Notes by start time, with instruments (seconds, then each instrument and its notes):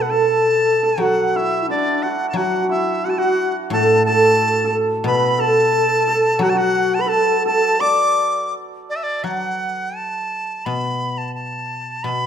Already playing: guzheng B2, hammered dulcimer D4 A4 B4 D5
0.00 xiao B4, dizi F#5
0.04 xiao A4
0.10 xiao A4, hammered dulcimer A4, dizi A5
0.83 hammered dulcimer A4
0.98 guzheng F#3, xiao F#4, hammered dulcimer F#4
1.02 dizi F#5
1.36 hammered dulcimer E4, dizi E5
1.62 xiao E4
1.67 xiao D4, hammered dulcimer D4, dizi D5
2.03 hammered dulcimer F#4, dizi F#5
2.29 dizi A5
2.33 guzheng F#3, xiao F#4, dizi F#5
2.38 hammered dulcimer F#4
2.63 hammered dulcimer F#4
2.69 hammered dulcimer E4, dizi E5
3.05 hammered dulcimer F#4, xiao F#4, dizi F#5
3.10 dizi A5
3.18 hammered dulcimer F#4, xiao F#4, dizi F#5
3.70 guzheng A2, xiao A4, hammered dulcimer A4, dizi A5
4.06 xiao A4, hammered dulcimer A4, dizi A5
4.64 hammered dulcimer A4
5.04 guzheng B2, hammered dulcimer B4, xiao B4, dizi B5
5.38 hammered dulcimer A4, xiao A4, dizi A5
6.08 hammered dulcimer A4
6.39 guzheng F#3, hammered dulcimer F#4, dizi F#5
6.43 xiao F#4
6.50 dizi A5
6.55 hammered dulcimer F#4, xiao F#4, dizi F#5
6.94 dizi A5
6.99 hammered dulcimer B4, xiao B4, dizi B5
7.06 hammered dulcimer A4, xiao A4, dizi A5
7.45 xiao A4, hammered dulcimer A4, dizi A5
7.80 xiao D5, hammered dulcimer D5, dizi D6
8.90 dizi D5
8.96 dizi E5
9.03 dizi D5
9.24 guzheng F#3, dizi F#5
9.96 dizi A5
10.65 guzheng B2, dizi B5
11.18 dizi A5
11.35 dizi A5
12.03 guzheng B2, dizi B5